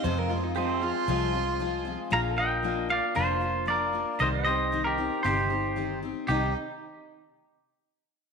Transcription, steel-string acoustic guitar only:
\new Staff \with { instrumentName = "Steel-string acoustic guitar" } { \time 4/4 \key c \minor \tempo 4 = 115 <f, c f aes c' f'>8 <f aes c' f'>8 <f aes c' f'>8 <f aes c' f'>8 <f, c f aes c' f'>8 <f aes c' f'>8 <f aes c' f'>8 <f aes c' f'>8 | <bes, f bes d' f'>8 <bes d' f'>8 <f bes d' f'>8 <bes d' f'>8 <bes, f bes d' f'>8 <bes d' f'>8 <f bes d' f'>8 <bes d' f'>8 | <c ees c' ees' g'>8 <c' ees' g'>8 <ees c' ees' g'>8 <c' ees' g'>8 <c ees c' ees' g'>8 <c' ees' g'>8 <ees c' ees' g'>8 <c' ees' g'>8 | <c ees c' ees' g'>8 r2. r8 | }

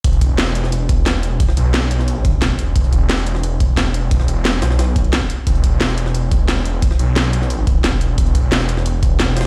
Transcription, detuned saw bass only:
\new Staff \with { instrumentName = "Detuned saw bass" } { \clef bass \time 4/4 \key c \lydian \tempo 4 = 177 e,,2~ e,,8 e,,4. | r8 b,,2~ b,,8 e,,4 | e,,2~ e,,8 e,,4. | e,,4. b,,4. r4 |
e,,2~ e,,8 e,,4. | r8 b,,2~ b,,8 e,,4 | e,,2~ e,,8 e,,4. | }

